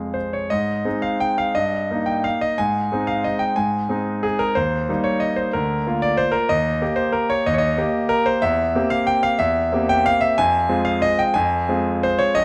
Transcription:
grand piano
Already playing: F2 C3 G#3 F5
0.14 C5
0.33 C#5
0.50 G#2 D#5
0.85 G#3 C4 D#4
1.02 F5
1.20 G5
1.38 F5
1.55 G2 D#5
1.91 A#3 D#4
2.06 G5
2.24 F5
2.41 D#5
2.58 G#2 G#5
2.92 G#3 C4 D#4
3.07 F5
3.24 D#5
3.39 G5
3.56 G#2 G#5
3.89 G#3 C4 D#4
4.23 G#4
4.39 A#4
4.55 D#2 C5
4.89 G3 A#3 D#4
5.04 C#5
5.20 D#5
5.36 C5
5.53 D2 A#4
5.87 A#3 F4
6.02 D5
6.17 C5
6.32 A#4
6.49 D#2 D#5
6.81 A#3 G4
6.96 C5
7.12 A#4
7.30 C#5
7.46 D#2 D#5
7.54 C#5
7.58 D#5
7.78 A#3 G4
8.09 A#4
8.26 C5
8.42 E2 E5
8.75 A#3 C4 G4
8.90 F5
9.07 G5
9.23 F5
9.39 E2 E5
9.72 A#3 C4 G4
9.89 G5
10.06 F5
10.21 E5
10.38 F2 G#5
10.69 G#3 C4 F4
10.85 F5
11.02 D#5
11.19 G5
11.34 F2 G#5
11.69 G#3 C4 F4
12.03 C5
12.19 C#5
12.35 A#1 D#5

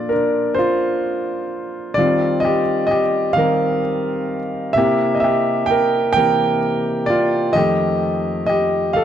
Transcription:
grand piano
Already playing: A#2 D4 F4 A4 D5
0.09 D4 A#4
0.55 C5
0.59 F4
1.94 D#3 G3 D5
1.98 C4 F4
2.40 D#5
2.45 G4
2.87 D#5
2.91 G4
3.33 D#3 G3 F5
3.37 C4 A#4
4.73 C3 E4 E5
4.77 A#3 G4
5.15 D#5
5.20 E5
5.24 G4
5.66 G5
5.71 A#4
6.13 C3 E3 A#3 G5
6.17 A#4
7.06 F4 D5
7.53 F2 D#3 A3 G4 D#5
8.46 G4 D#5
8.93 A4 F5

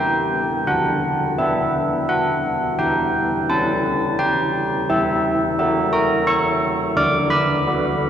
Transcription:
church bells
Already playing: B3 G4 G5
0.67 D3 F#5
1.38 B3 B4 E5
2.09 F#5
2.79 E3 G5
3.49 C#4 B4 A5
4.19 G5
4.89 E3 E5
5.59 F#4 A#4 E5
5.93 A#5
6.27 C#6
6.96 D3 D6
7.30 B5
7.67 F#4 B4

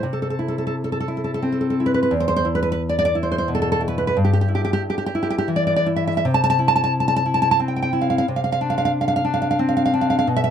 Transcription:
nylon-string guitar
0.03 C3
0.13 A4
0.22 A4
0.30 A4
0.39 E4
0.48 A4
0.58 A4
0.67 A4
0.84 A4
0.92 A4
1.00 A4
1.08 E4
1.17 A4
1.24 A4
1.34 A4
1.42 C4
1.52 A4
1.61 A4
1.70 A4
1.80 E4
1.86 B4
1.94 B4
2.03 B4
2.11 E2
2.20 C5
2.28 C5
2.36 C5
2.45 E4
2.55 B4
2.63 B4
2.72 B4
2.89 D5
2.99 D5
3.05 D5
3.15 E4
3.23 C5
3.32 C5
3.38 C5
3.48 B2
3.55 A4
3.62 A4
3.72 A4
3.81 E4
3.88 B4
3.98 B4
4.07 B4
4.17 G2
4.25 G4
4.33 G4
4.41 G4
4.48 E4
4.55 G4
4.65 G4
4.73 G4
4.90 G4
4.98 G4
5.06 G4
5.15 E4
5.23 G4
5.30 G4
5.38 G4
5.48 E3
5.56 D5
5.67 D5
5.76 D5
5.86 E4
5.96 E5
6.07 E5
6.17 E5
6.25 C3
6.34 A5
6.44 A5
6.50 A5
6.59 E4
6.68 A5
6.76 A5
6.84 A5
7.00 A5
7.08 A5
7.16 A5
7.26 E4
7.34 A5
7.42 A5
7.51 A5
7.60 C4
7.68 G5
7.76 G5
7.82 G5
7.93 E4
8.01 F5
8.10 F5
8.18 F5
8.28 C3
8.36 F5
8.44 F5
8.52 F5
8.61 D4
8.70 F5
8.78 F5
8.85 F5
9.01 F5
9.08 F5
9.16 F5
9.25 D4
9.34 F5
9.42 F5
9.51 F5
9.59 C4
9.69 F5
9.77 F5
9.86 F5
9.94 D4
10.01 F5
10.10 F5
10.19 F5
10.27 B2
10.36 E5
10.44 E5

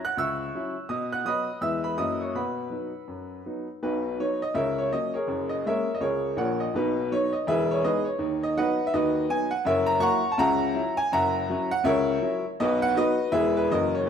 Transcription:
grand piano
0.05 F#5 F#6
0.17 C#2 E5 C#6 E6
0.55 F#3 C#4 E4
0.89 B2 D#5 D#6
1.12 F#5 F#6
1.25 F#3 B3 F#4 D#5 B5 D#6
1.61 E2 G#3 B3 E4 E5 E6
1.84 B4 B5
1.98 F#2 F#3 A#3 E4 D#5 D#6
2.21 C#5 C#6
2.35 B2 B4 F#5 B5
2.70 F#3 B3 D#4
3.08 F#2
3.46 F#3 B3 D#4
3.83 B1 B2 D#4 F#4 B4
4.20 F#3 B3 D#4 C#5
4.42 D#5
4.54 C#2 C#3 A#4 C#5 E5
4.79 C#5
4.92 F#3 A#3 C#4 D#5
5.14 G#4 A#4 C#5
5.27 F#1 F#2
5.49 D#5
5.66 G#3 A#3 C#4 A#4 C#5 E5
5.95 D#5
6.00 C#2 C#3 G#4 A#4 C#5
6.37 A#1 A#2 A#4 C#5 F#5
6.60 D#5
6.74 B1 B2 D#4 F#4 B4
7.12 F#3 B3 D#4 C#5
7.33 D#5
7.47 E1 E2 G#4 B4 E5
7.71 C#5
7.84 G#3 B3 D#4 G#4 B4 D#5
8.05 C#5
8.19 D#2 D#3
8.43 D#5
8.57 F#3 B3 D#4 B4 D#5 F#5
8.87 E5
8.94 D#2 D#3 F#4 B4 D#5
9.30 F#3 B3 D#4 G#5
9.51 F#5
9.65 F#1 F#2 A#4 C#5 E5
9.86 A#5
10.00 F#3 A#3 E4 F#5 A#5 C#6
10.32 A5
10.38 C#2 C#3 E5 F#5 A#5
10.74 F#3 C#4 E4
10.97 G#5
11.12 F#1 F#2 E5 F#5 A#5
11.50 F#3 C#4 E4
11.71 F#5
11.84 C#2 C#3 A#4 C#5 E5
12.22 F#3 C#4 E4
12.60 B1 B2 F#4 B4 D#5
12.82 F#5
12.96 F#3 B3 D#4 F#4 B4 D#5
13.32 E1 E2 E3 G#3 B3 G#4 B4 E5
13.57 B4
13.71 F#1 F#2 E3 F#3 A#3 F#4 A#4 D#5
13.95 C#5
14.05 B1

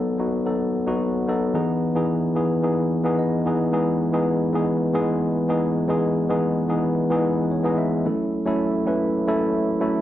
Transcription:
tine electric piano
Already playing: F#3 B3 D#4 A4
0.18 F#3 B3 D#4 F#4
0.46 F#3 B3 D#4 A4
0.87 F#3 B3 D#4 F#4
1.28 F#3 B3 D#4 A4
1.54 E3 B3 D#4 G#4
1.95 E3 B3 D#4 G#4
2.35 E3 B3 D#4 G#4
2.63 E3 B3 D#4 G#4
3.04 E3 B3 D#4 G#4
3.19 D#5
3.46 E3 B3 D#4 G#4 B4
3.72 E3 G#3 B3 D#4 G#4
4.12 E3 G#3 B3 D#4 G#4
4.53 E3 G#3 B3 D#4 G#4
4.93 E3 G#3 B3 D#4 G#4
5.48 E3 G#3 B3 D#4 G#4
5.88 E3 G#3 B3 D#4 G#4
6.29 E3 G#3 B3 D#4 G#4
6.68 E3 G#3 B3 D#4 G#4
7.10 E3 G#3 B3 D#4 G#4
7.24 B4
7.51 C#5
7.64 E3 G#3 B3 D#4 G#4 D#5
7.78 E5
8.05 F#3 A3 C#4 E4 A4
8.46 F#3 A3 C#4 E4 A4
8.86 F#3 A3 C#4 E4 B4
9.27 F#3 A3 C#4 E4 A4
9.80 F#3 A3 C#4 E4 A4

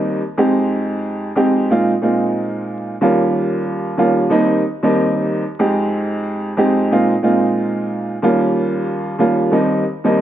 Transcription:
upright piano
Already playing: D#2 G3 A#3 C4 D#4
0.38 F2 G#3 C4 D#4 G4
1.36 F2 G#3 C4 D#4 G4
1.70 A#2 G#3 C4 D#4 F4
2.02 A#2 G#3 C4 D#4 F4
3.01 D#2 G3 A#3 C#4 F4
3.97 D#2 G3 A#3 C#4 F4
4.30 D#2 G3 A#3 C4 D#4
4.83 D#2 G3 A#3 C4 D#4
5.59 F2 G#3 C4 D#4 G4
6.57 F2 G#3 C4 D#4 G4
6.92 A#2 G#3 C4 D#4 F4
7.23 A#2 G#3 C4 D#4 F4
8.22 D#2 G3 A#3 C#4 F4
9.19 D#2 G3 A#3 C#4 F4
9.51 D#2 G3 A#3 C4 D#4
10.04 D#2 G3 A#3 C4 D#4

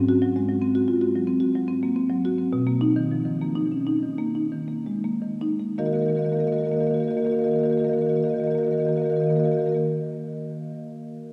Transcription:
marimba
Already playing: G#2 C4
0.08 F#4
0.22 F#3
0.36 G#3
0.48 F#3
0.62 C4
0.75 F#4
0.88 F4
1.01 F#4
1.15 F#3
1.27 C4
1.40 F#4
1.55 F#3
1.68 C4
1.83 A#3
1.96 C4
2.10 F#3
2.25 F#4
2.38 C4
2.53 B2
2.67 A#3
2.81 D#4
2.96 D#3
3.11 F3
3.25 D#3
3.41 A#3
3.55 D#4
3.72 C#4
3.87 D#4
4.02 D#3
4.18 A#3
4.35 D#4
4.52 D#3
4.68 A#3
4.86 G#3
5.04 A#3
5.22 D#3
5.41 D#4
5.59 A#3
5.78 D#3 A#3 F#4 A#4 D#5 F5
5.85 D#3 A#3 F#4 A#4 D#5 F5
5.91 A#3 F#4 D#5 F5
5.95 D#3 A#4 D#5 F5
6.01 A#3 F#4 A#4
6.06 D#3 A#3 F#4 A#4 D#5 F5
6.13 D#3 F#4 A#4 D#5 F5
6.17 A#3 D#5 F5
6.23 D#3 A#3 F#4 A#4 D#5 F5
6.29 A#3 F#4 A#4 F5
6.33 D#3 F#4 D#5
6.39 A#3 A#4 D#5 F5
6.44 D#3 F#4 A#4 D#5 F5
6.48 A#3
6.52 D#3 A#3 F#4 A#4 D#5 F5
6.59 D#3 F#4 A#4 D#5 F5
6.64 A#3 F#4 A#4 F5
6.69 D#3 A#3 D#5 F5
6.73 F#4 A#4 D#5
6.79 D#3 A#3 F#4 A#4 D#5 F5
6.86 A#3 F#4 A#4 D#5 F5
6.91 D#3 A#3 F#4 F5
6.96 D#3 F#4 A#4 D#5 F5
7.02 A#3 A#4 D#5
7.07 D#3 A#3 F#4 F5
7.11 A#4 D#5 F5
7.15 D#3 A#3 F#4 A#4 D#5
7.20 F#4 F5
7.24 D#3 A#3 A#4 D#5 F5
7.30 A#3 F#4 D#5 F5
7.34 D#3 F#4 A#4
7.38 A#3 A#4 D#5 F5
7.44 D#3 A#3 F#4 D#5 F5
7.48 F#4 A#4 D#5
7.52 D#3 A#3 A#4 F5
7.58 A#3 F#4 D#5 F5
7.63 D#3 F#4 A#4 D#5 F5
7.70 D#3 A#3 F#4 A#4 D#5 F5
7.77 D#3 A#3 F#4 A#4 D#5 F5
7.84 A#3 F#4 A#4 D#5 F5
7.89 D#3 A#3 A#4 F5
7.93 F#4 D#5
7.98 D#3 A#3 F#4 A#4 D#5 F5
8.05 D#3 A#4 D#5 F5
8.09 A#3 F#4 A#4 F5
8.15 D#3 A#3 F#4 D#5 F5
8.20 D#3 F#4 A#4 D#5
8.25 A#3 A#4 F5
8.30 A#3 F#4 D#5 F5
8.34 D#3 A#4 D#5
8.38 D#3 A#3 F#4 F5
8.44 A#3 F#4 A#4 D#5 F5
8.50 D#3 F#4 A#4 D#5 F5
8.55 A#3 F#4 A#4 D#5 F5
8.60 D#3 A#3
8.64 D#3 F#4 A#4 D#5 F5
8.71 A#3 F#4 A#4 D#5 F5
8.78 D#3 A#3 A#4 D#5 F5
8.82 F#4 D#5 F5
8.87 D#3 A#3 F#4 A#4 F5
8.93 D#3 A#4 D#5
8.97 A#3 F#4 D#5 F5
9.02 D#3 A#3 F#4 A#4 F5
9.06 F#4 A#4 D#5 F5
9.12 D#3 A#3 F#4 D#5
9.16 A#4 D#5 F5
9.21 D#3 A#3 F#4 A#4 F5
9.27 D#3 A#3 F#4 A#4 D#5
9.31 D#5 F5
9.36 D#3 A#3 F#4 A#4 D#5 F5
9.43 A#3 F#4 A#4 D#5 F5
9.48 D#3 A#3 A#4 F5
9.53 F#4 D#5 F5
9.57 D#3 A#3 F#4 A#4
9.62 D#3 D#5 F5
9.66 A#3 F#4 A#4 D#5
9.71 A#3 F#4 A#4 F5
9.76 D#3 D#5

